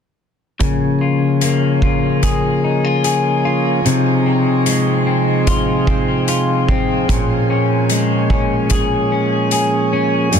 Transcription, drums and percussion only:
0.60 kick medium
0.60 closed hi-hat medium
1.41 closed hi-hat medium
1.82 kick medium
2.23 kick medium
2.23 closed hi-hat medium
3.04 closed hi-hat medium
3.86 closed hi-hat medium
4.66 closed hi-hat medium
5.47 kick medium
5.47 closed hi-hat medium
5.87 kick medium
6.28 closed hi-hat medium
6.69 kick medium
7.09 kick medium
7.09 closed hi-hat medium
7.89 closed hi-hat medium
8.30 kick medium
8.70 kick medium
8.70 closed hi-hat medium
9.51 closed hi-hat medium
10.32 closed hi-hat medium

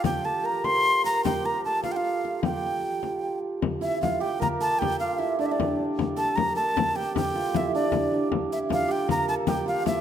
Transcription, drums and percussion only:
0.04 frame drum medium
0.64 frame drum medium
1.06 frame drum soft
1.25 frame drum medium
1.84 frame drum medium
2.24 frame drum soft
2.43 frame drum medium
3.03 frame drum medium
3.62 frame drum medium
4.03 frame drum medium
4.23 frame drum soft
4.42 frame drum medium
4.82 frame drum medium
5.40 frame drum soft
5.60 frame drum medium
5.99 frame drum medium
6.37 frame drum medium
6.58 frame drum soft
6.77 frame drum medium
7.16 frame drum medium
7.54 frame drum medium
7.74 frame drum soft
7.92 frame drum medium
8.12 frame drum soft
8.32 frame drum medium
8.70 frame drum medium
8.89 frame drum soft
9.09 frame drum medium
9.47 frame drum medium
9.86 frame drum medium

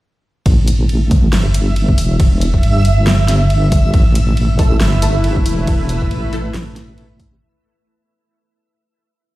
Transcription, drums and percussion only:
0.46 kick loud
0.46 ride medium
0.68 closed hi-hat medium
0.89 ride soft
1.11 kick loud
1.11 open hi-hat medium
1.33 snare loud
1.33 ride medium
1.54 closed hi-hat medium
1.76 ride soft
1.89 kick medium
1.98 open hi-hat medium
2.20 kick loud
2.20 ride medium
2.41 closed hi-hat medium
2.54 kick medium
2.63 ride soft
2.85 open hi-hat medium
3.07 snare loud
3.07 ride medium
3.28 snare medium
3.28 closed hi-hat medium
3.50 ride soft
3.72 kick loud
3.72 open hi-hat medium
3.94 kick loud
3.94 ride medium
4.15 closed hi-hat medium
4.37 ride soft
4.59 kick loud
4.59 open hi-hat medium
4.80 snare loud
4.80 ride medium
5.02 closed hi-hat medium
5.24 ride soft
5.37 kick medium
5.46 open hi-hat medium
5.67 kick loud
5.67 ride medium
5.89 closed hi-hat medium
6.02 kick medium
6.11 ride soft
6.33 open hi-hat medium
6.54 snare loud
6.54 ride medium
6.76 snare medium
6.76 closed hi-hat medium
6.98 ride soft
7.20 kick loud
7.20 open hi-hat medium

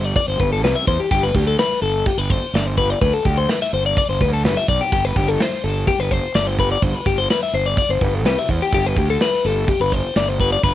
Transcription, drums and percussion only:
0.16 kick loud
0.16 crash medium
0.40 kick medium
0.40 crash medium
0.64 snare loud
0.64 crash medium
0.87 kick medium
0.87 crash medium
1.11 kick loud
1.11 crash medium
1.35 kick medium
1.35 crash medium
1.58 snare loud
1.58 crash medium
1.72 snare soft
1.83 crash medium
2.06 kick loud
2.06 crash medium
2.30 kick medium
2.30 crash medium
2.55 snare loud
2.55 crash medium
2.78 kick medium
2.78 crash medium
3.02 kick loud
3.02 crash medium
3.25 kick medium
3.25 crash medium
3.49 snare loud
3.49 crash medium
3.62 snare soft
3.73 crash medium
3.97 kick loud
3.97 crash medium
4.21 kick medium
4.21 crash medium
4.44 snare loud
4.44 crash medium
4.68 kick medium
4.68 crash medium
4.92 kick loud
4.92 crash medium
5.16 kick loud
5.16 crash medium
5.40 snare loud
5.40 crash medium
5.53 snare soft
5.64 crash medium
5.87 kick loud
5.87 crash medium
6.11 kick medium
6.11 crash medium
6.34 snare loud
6.34 crash medium
6.58 kick medium
6.58 crash medium
6.82 kick loud
6.82 crash medium
7.06 kick loud
7.06 crash medium
7.30 snare loud
7.30 crash medium
7.43 snare soft
7.53 crash medium
7.77 kick loud
7.77 crash medium
8.01 kick medium
8.01 crash medium
8.25 snare loud
8.25 crash medium
8.49 kick medium
8.49 crash medium
8.72 kick loud
8.72 crash medium
8.96 kick medium
8.96 crash medium
9.20 snare loud
9.20 crash medium
9.33 snare soft
9.44 crash medium
9.68 kick loud
9.68 crash medium
9.92 kick medium
9.92 crash medium
10.15 snare medium
10.15 crash medium
10.40 kick medium
10.40 crash medium
10.63 kick loud
10.63 crash medium

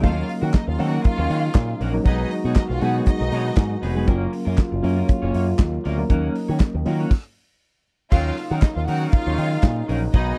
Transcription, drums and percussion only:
0.04 kick loud
0.04 closed hi-hat medium
0.29 open hi-hat medium
0.54 kick loud
0.54 snare medium
0.54 clap medium
0.54 closed hi-hat medium
0.80 open hi-hat medium
1.04 kick loud
1.04 closed hi-hat medium
1.30 open hi-hat medium
1.55 kick loud
1.55 snare loud
1.55 clap medium
1.55 closed hi-hat medium
1.81 open hi-hat medium
2.06 kick loud
2.06 closed hi-hat medium
2.31 open hi-hat medium
2.55 kick loud
2.55 snare medium
2.55 clap medium
2.55 closed hi-hat medium
2.81 open hi-hat medium
3.06 kick loud
3.06 closed hi-hat medium
3.32 open hi-hat medium
3.56 kick loud
3.56 snare loud
3.56 clap medium
3.56 closed hi-hat medium
3.83 open hi-hat medium
4.08 kick loud
4.08 closed hi-hat medium
4.33 open hi-hat medium
4.58 kick loud
4.58 snare medium
4.58 clap medium
4.58 closed hi-hat medium
4.84 open hi-hat medium
5.08 kick loud
5.08 closed hi-hat medium
5.34 open hi-hat medium
5.59 kick loud
5.59 snare loud
5.59 clap loud
5.59 closed hi-hat medium
5.85 open hi-hat medium
6.10 kick loud
6.10 closed hi-hat medium
6.35 open hi-hat medium
6.60 kick loud
6.60 snare loud
6.60 clap medium
6.60 closed hi-hat medium
6.86 open hi-hat medium
7.11 kick loud
7.11 crash medium
8.12 kick loud
8.12 crash loud
8.37 open hi-hat medium
8.62 kick loud
8.62 snare medium
8.62 clap medium
8.62 closed hi-hat medium
8.88 open hi-hat medium
9.12 kick loud
9.12 closed hi-hat medium
9.38 open hi-hat medium
9.63 kick loud
9.63 snare loud
9.63 clap medium
9.63 closed hi-hat medium
9.89 open hi-hat medium
10.14 kick loud
10.14 closed hi-hat medium

